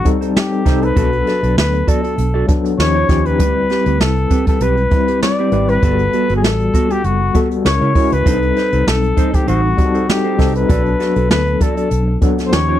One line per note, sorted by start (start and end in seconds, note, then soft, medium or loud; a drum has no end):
0.00 0.04 G3 medium
0.00 0.05 C4 medium
0.00 0.05 D#4 medium
0.00 0.06 A4 medium
0.04 0.60 G3 medium
0.04 0.60 C4 medium
0.04 0.60 D#4 medium
0.04 0.61 A4 medium
0.04 muted clean electric guitar stroke soft
0.04 kick medium
0.04 closed hi-hat medium
0.21 0.34 D#4 soft
0.21 0.35 A4 soft
0.21 0.35 C5 soft
0.21 closed hi-hat soft
0.37 0.85 G4 medium
0.37 snare loud
0.52 muted clean electric guitar stroke medium
0.52 closed hi-hat soft
0.65 0.90 C2 medium
0.65 0.93 G3 medium
0.65 0.94 C4 medium
0.65 0.82 D#4 medium
0.65 0.94 D#4 medium
0.65 0.81 A4 medium
0.65 0.94 A4 medium
0.65 0.81 C5 medium
0.65 kick medium
0.65 snare soft
0.65 closed hi-hat medium
0.82 0.97 D#4 medium
0.82 0.95 A4 medium
0.82 1.58 B4 medium
0.82 0.96 C5 medium
0.82 closed hi-hat soft
0.96 1.21 B1 loud
0.96 2.07 F#3 medium
0.96 2.07 B3 medium
0.96 2.07 D4 medium
0.96 1.16 F#4 medium
0.96 1.12 A4 loud
0.96 2.07 A4 medium
0.96 1.11 D5 medium
0.96 kick loud
0.96 closed hi-hat medium
1.13 muted clean electric guitar stroke soft
1.13 closed hi-hat soft
1.27 1.43 F#4 medium
1.27 1.42 A4 medium
1.27 1.42 D5 medium
1.27 snare soft
1.27 closed hi-hat soft
1.43 1.54 B1 medium
1.43 1.56 F#4 soft
1.43 1.56 A4 soft
1.43 1.57 D5 medium
1.43 closed hi-hat medium
1.57 1.81 D2 loud
1.57 1.90 B4 medium
1.57 muted clean electric guitar stroke soft
1.57 snare loud
1.74 muted clean electric guitar stroke soft
1.74 closed hi-hat soft
1.87 2.03 F#4 medium
1.87 2.03 A4 medium
1.87 2.49 A4 medium
1.87 2.02 D5 medium
1.87 kick medium
1.87 closed hi-hat medium
2.04 2.17 F#4 soft
2.04 2.17 A4 medium
2.04 2.18 D5 soft
2.04 closed hi-hat soft
2.18 2.42 B1 medium
2.18 muted clean electric guitar stroke soft
2.18 closed hi-hat medium
2.34 2.47 F#4 medium
2.34 2.47 A4 medium
2.34 2.48 D5 medium
2.48 2.78 F#3 medium
2.48 2.79 B3 medium
2.48 2.79 D4 medium
2.48 2.79 A4 medium
2.48 kick medium
2.48 closed hi-hat medium
2.64 muted clean electric guitar stroke soft
2.64 closed hi-hat soft
2.78 3.03 D#2 medium
2.78 3.06 F3 medium
2.78 3.06 C#4 medium
2.78 3.07 D#4 medium
2.78 3.07 G4 medium
2.78 3.28 C#5 medium
2.78 muted clean electric guitar stroke soft
2.78 snare loud
2.95 3.08 F4 medium
2.95 3.08 G4 medium
2.95 3.09 C#5 medium
3.08 3.40 D#2 medium
3.08 3.36 F3 medium
3.08 3.37 C#4 medium
3.08 3.37 D#4 medium
3.08 3.25 F4 medium
3.08 3.25 G4 medium
3.08 3.37 G4 medium
3.08 3.25 C#5 medium
3.08 kick medium
3.08 snare soft
3.08 closed hi-hat medium
3.25 4.03 B4 medium
3.25 muted clean electric guitar stroke soft
3.25 closed hi-hat soft
3.39 3.64 D2 medium
3.39 4.50 G3 medium
3.39 4.50 C4 medium
3.39 3.60 C4 medium
3.39 4.50 E4 medium
3.39 3.56 G4 medium
3.39 4.50 B4 medium
3.39 3.55 B4 medium
3.39 kick loud
3.39 closed hi-hat medium
3.56 muted clean electric guitar stroke soft
3.69 3.86 C4 medium
3.69 3.86 G4 medium
3.69 3.85 B4 medium
3.69 snare soft
3.69 closed hi-hat soft
3.86 3.97 D2 loud
3.86 3.99 C4 soft
3.86 4.00 G4 soft
3.86 4.00 B4 medium
3.86 closed hi-hat soft
4.00 4.24 C2 loud
4.00 4.47 A4 medium
4.00 snare medium
4.16 muted clean electric guitar stroke soft
4.16 closed hi-hat soft
4.30 4.47 C4 medium
4.30 4.47 G4 medium
4.30 4.46 B4 medium
4.30 kick medium
4.30 closed hi-hat medium
4.47 4.60 C4 soft
4.47 4.61 G4 soft
4.47 4.64 A4 medium
4.47 4.61 B4 medium
4.47 kick medium
4.47 closed hi-hat medium
4.61 4.85 B1 medium
4.61 4.81 C4 medium
4.61 4.77 G4 medium
4.61 5.22 B4 medium
4.61 4.77 B4 medium
4.61 closed hi-hat medium
4.77 muted clean electric guitar stroke soft
4.77 closed hi-hat soft
4.91 5.46 G3 medium
4.91 5.47 C4 medium
4.91 5.47 E4 medium
4.91 5.47 B4 medium
4.91 muted clean electric guitar stroke soft
4.91 kick medium
4.91 closed hi-hat medium
5.08 5.21 C4 soft
5.08 5.21 G4 soft
5.08 5.22 B4 medium
5.08 closed hi-hat soft
5.23 5.71 D5 medium
5.23 snare loud
5.38 5.51 C4 medium
5.38 5.52 G4 medium
5.38 5.53 B4 medium
5.38 closed hi-hat soft
5.52 5.76 G#1 medium
5.52 5.80 G3 medium
5.52 5.80 C4 medium
5.52 5.69 C4 medium
5.52 5.80 E4 medium
5.52 5.69 G4 medium
5.52 5.80 B4 medium
5.52 5.68 B4 medium
5.52 closed hi-hat medium
5.68 6.36 B4 loud
5.68 muted clean electric guitar stroke soft
5.68 closed hi-hat soft
5.83 6.07 G1 loud
5.83 6.93 G3 medium
5.83 6.93 B3 medium
5.83 6.03 B3 medium
5.83 6.93 F#4 medium
5.83 5.99 F#4 medium
5.83 6.94 A4 medium
5.83 5.98 A4 medium
5.83 kick loud
5.83 closed hi-hat medium
5.99 muted clean electric guitar stroke soft
5.99 closed hi-hat soft
6.13 6.30 B3 medium
6.13 6.30 F#4 medium
6.13 6.29 A4 medium
6.13 closed hi-hat soft
6.29 6.44 G1 medium
6.29 6.43 B3 soft
6.29 6.43 F#4 medium
6.29 6.44 A4 medium
6.29 closed hi-hat medium
6.37 6.46 G#4 medium
6.44 6.68 A1 medium
6.44 6.93 A4 medium
6.44 snare loud
6.60 muted clean electric guitar stroke soft
6.60 closed hi-hat soft
6.74 6.90 B3 medium
6.74 6.90 F#4 medium
6.74 6.89 A4 medium
6.74 kick medium
6.74 closed hi-hat medium
6.90 7.03 B3 soft
6.90 7.04 F#4 medium
6.90 7.06 G4 medium
6.90 7.04 A4 medium
6.90 closed hi-hat medium
7.04 7.29 F#1 medium
7.04 7.39 F#4 medium
7.04 closed hi-hat medium
7.21 muted clean electric guitar stroke soft
7.34 7.65 G3 medium
7.34 7.55 B3 medium
7.34 7.65 B3 medium
7.34 7.65 F#4 medium
7.34 7.50 F#4 medium
7.34 7.65 A4 medium
7.34 7.50 A4 medium
7.34 kick medium
7.34 closed hi-hat medium
7.51 muted clean electric guitar stroke soft
7.51 closed hi-hat soft
7.64 7.78 C#2 medium
7.64 7.92 G#3 medium
7.64 7.93 C#4 medium
7.64 7.93 E4 medium
7.64 7.93 A#4 medium
7.64 8.14 C#5 medium
7.64 muted clean electric guitar stroke soft
7.64 snare loud
7.81 7.93 C#3 medium
7.81 7.94 E4 medium
7.81 7.95 A#4 medium
7.81 7.95 C#5 medium
7.81 closed hi-hat soft
7.95 8.23 G#3 medium
7.95 8.23 C#4 medium
7.95 8.12 E4 medium
7.95 8.23 E4 medium
7.95 8.23 F#4 medium
7.95 8.12 A#4 medium
7.95 8.11 C#5 medium
7.95 kick medium
7.95 open hi-hat medium
8.12 8.23 C#2 medium
8.12 8.89 B4 loud
8.12 closed hi-hat soft
8.25 8.50 C2 medium
8.25 9.36 G3 medium
8.25 9.36 C4 medium
8.25 8.33 D4 soft
8.25 8.46 D#4 medium
8.25 9.36 A4 medium
8.25 8.41 A4 medium
8.25 8.41 C5 loud
8.25 kick loud
8.25 closed hi-hat medium
8.32 9.40 D#4 medium
8.42 muted clean electric guitar stroke medium
8.42 closed hi-hat soft
8.56 8.72 D#4 medium
8.56 8.72 A4 medium
8.56 8.71 C5 medium
8.56 snare soft
8.56 closed hi-hat soft
8.72 8.84 C2 medium
8.72 8.86 D#4 soft
8.72 8.86 A4 soft
8.72 8.86 C5 medium
8.72 closed hi-hat medium
8.87 9.11 B1 medium
8.87 9.36 A4 medium
8.87 muted clean electric guitar stroke soft
8.87 snare loud
9.03 muted clean electric guitar stroke soft
9.03 closed hi-hat soft
9.17 9.33 D#4 medium
9.17 9.33 A4 medium
9.17 9.32 C5 medium
9.17 kick medium
9.17 closed hi-hat medium
9.33 9.46 D#4 soft
9.33 9.48 G4 medium
9.33 9.46 A4 medium
9.33 9.47 C5 medium
9.33 kick medium
9.33 closed hi-hat medium
9.47 9.72 A1 medium
9.47 9.67 D#4 medium
9.47 10.11 F#4 medium
9.47 9.63 A4 medium
9.47 9.62 C5 medium
9.47 closed hi-hat medium
9.63 muted clean electric guitar stroke soft
9.77 10.33 G3 medium
9.77 10.33 C4 medium
9.77 10.33 D#4 medium
9.77 9.85 F#4 medium
9.77 muted clean electric guitar stroke soft
9.77 kick medium
9.77 closed hi-hat medium
9.85 10.37 A4 medium
9.94 10.07 D#4 soft
9.94 10.07 A4 medium
9.94 10.08 C5 medium
9.94 closed hi-hat soft
10.08 10.56 G4 medium
10.08 muted clean electric guitar stroke soft
10.08 snare loud
10.24 10.37 D#4 medium
10.24 10.38 A4 medium
10.24 10.38 C5 medium
10.38 10.63 C2 medium
10.38 10.66 G3 medium
10.38 10.66 C4 medium
10.38 10.55 D#4 medium
10.38 10.66 D#4 medium
10.38 10.54 A4 medium
10.38 10.67 A4 medium
10.38 10.54 C5 medium
10.38 kick medium
10.38 snare soft
10.38 open hi-hat medium
10.55 11.27 B4 medium
10.55 muted clean electric guitar stroke soft
10.55 closed hi-hat soft
10.69 10.94 B1 medium
10.69 11.79 F#3 medium
10.69 11.80 B3 medium
10.69 10.76 C4 soft
10.69 10.89 F#4 medium
10.69 10.85 A4 medium
10.69 11.80 A4 medium
10.69 10.84 D5 medium
10.69 kick loud
10.69 closed hi-hat medium
10.76 11.83 D4 medium
10.86 muted clean electric guitar stroke soft
10.86 closed hi-hat soft
10.99 11.16 F#4 medium
10.99 11.15 A4 medium
10.99 11.15 D5 medium
10.99 snare soft
10.99 closed hi-hat soft
11.16 11.27 B1 medium
11.16 11.29 F#4 soft
11.16 11.29 A4 soft
11.16 11.30 D5 soft
11.16 closed hi-hat soft
11.30 11.54 D2 medium
11.30 11.64 B4 medium
11.30 snare loud
11.46 muted clean electric guitar stroke soft
11.46 closed hi-hat soft
11.60 11.77 F#4 medium
11.60 11.77 A4 medium
11.60 12.22 A4 medium
11.60 11.76 D5 medium
11.60 kick medium
11.60 closed hi-hat medium
11.77 11.90 F#4 soft
11.77 11.90 A4 medium
11.77 11.91 D5 medium
11.77 closed hi-hat medium
11.91 12.15 B1 medium
11.91 muted clean electric guitar stroke soft
11.91 closed hi-hat medium
12.08 muted clean electric guitar stroke soft
12.21 12.52 F#3 medium
12.21 12.52 B3 medium
12.21 12.52 D4 medium
12.21 12.52 A4 medium
12.21 kick medium
12.21 closed hi-hat medium
12.38 muted clean electric guitar stroke soft
12.38 snare soft
12.38 closed hi-hat soft
12.46 12.55 C5 medium
12.52 12.76 D#2 medium
12.52 12.79 F3 medium
12.52 12.79 C#4 medium
12.52 12.80 D#4 medium
12.52 12.80 G4 medium
12.52 12.80 C#5 medium
12.52 muted clean electric guitar stroke soft
12.52 snare loud
12.69 12.80 F4 medium
12.69 12.80 G4 medium
12.69 12.80 C#5 medium